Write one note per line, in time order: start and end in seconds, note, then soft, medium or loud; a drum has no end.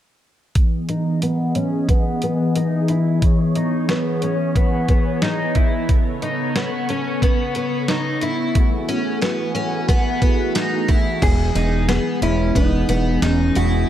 0.55 5.85 E3 medium
0.55 11.19 B3 medium
0.55 5.85 G#4 medium
0.55 3.20 D#5 medium
0.55 kick medium
0.55 closed hi-hat medium
0.89 1.22 D#4 medium
0.89 closed hi-hat soft
1.22 1.55 B3 medium
1.22 closed hi-hat medium
1.55 1.89 C#4 medium
1.55 closed hi-hat soft
1.89 2.22 B3 medium
1.89 kick medium
1.89 closed hi-hat medium
2.22 2.56 B3 medium
2.22 closed hi-hat soft
2.56 2.89 D#4 medium
2.56 closed hi-hat medium
2.88 3.23 E4 medium
2.88 closed hi-hat soft
3.22 8.52 C#5 medium
3.22 kick medium
3.22 closed hi-hat medium
3.56 3.89 D#4 medium
3.56 closed hi-hat soft
3.89 4.23 B3 medium
3.89 snare medium
3.89 closed hi-hat medium
4.22 4.56 C#4 medium
4.22 closed hi-hat soft
4.56 4.88 B3 medium
4.56 kick medium
4.56 closed hi-hat medium
4.89 5.22 B3 medium
4.89 kick medium
4.89 closed hi-hat soft
5.22 5.56 D#4 medium
5.22 snare medium
5.22 closed hi-hat medium
5.55 5.89 E4 medium
5.55 kick medium
5.55 closed hi-hat soft
5.89 8.53 C#3 medium
5.89 8.53 A4 medium
5.89 kick medium
5.89 closed hi-hat medium
6.22 6.56 D#4 medium
6.22 closed hi-hat soft
6.56 6.89 B3 medium
6.56 snare medium
6.56 closed hi-hat medium
6.89 7.22 C#4 medium
6.89 closed hi-hat soft
7.22 7.55 B3 medium
7.22 kick medium
7.22 closed hi-hat medium
7.55 7.89 B3 medium
7.55 closed hi-hat soft
7.88 8.22 D#4 medium
7.88 snare medium
7.88 closed hi-hat medium
8.21 8.56 E4 medium
8.21 closed hi-hat soft
8.55 11.20 E3 medium
8.55 11.20 A3 medium
8.55 11.19 F#4 medium
8.55 11.19 G#4 medium
8.55 kick medium
8.55 closed hi-hat medium
8.88 9.21 C#4 medium
8.88 closed hi-hat soft
9.21 9.54 B3 medium
9.21 snare medium
9.21 closed hi-hat medium
9.55 9.88 C#4 medium
9.55 closed hi-hat soft
9.88 10.20 B3 medium
9.88 kick medium
9.88 closed hi-hat medium
10.22 10.55 B3 medium
10.22 kick medium
10.22 closed hi-hat soft
10.55 10.89 D#4 medium
10.55 snare medium
10.55 closed hi-hat medium
10.88 11.22 E4 medium
10.88 kick medium
10.88 closed hi-hat soft
11.22 11.52 E1 loud
11.22 13.89 E3 medium
11.22 13.89 G#3 medium
11.22 13.89 B3 medium
11.22 13.89 G#4 medium
11.22 12.23 G#4 medium
11.22 kick loud
11.22 closed hi-hat medium
11.22 crash medium
11.55 11.99 E1 medium
11.55 11.88 D#4 medium
11.55 closed hi-hat soft
11.89 12.22 B3 medium
11.89 snare medium
11.89 closed hi-hat medium
12.22 12.51 E1 loud
12.22 12.56 C#4 medium
12.22 12.57 E4 medium
12.22 closed hi-hat soft
12.55 12.85 E1 loud
12.55 12.88 B3 medium
12.55 13.28 D#4 medium
12.55 kick medium
12.55 closed hi-hat medium
12.89 13.18 E1 medium
12.89 13.22 B3 medium
12.89 closed hi-hat soft
13.22 13.52 E1 medium
13.22 13.56 D#4 medium
13.22 snare medium
13.22 closed hi-hat medium
13.28 13.59 C#4 medium
13.55 13.85 E1 medium
13.55 13.89 E4 medium
13.55 13.89 F#4 medium
13.55 closed hi-hat medium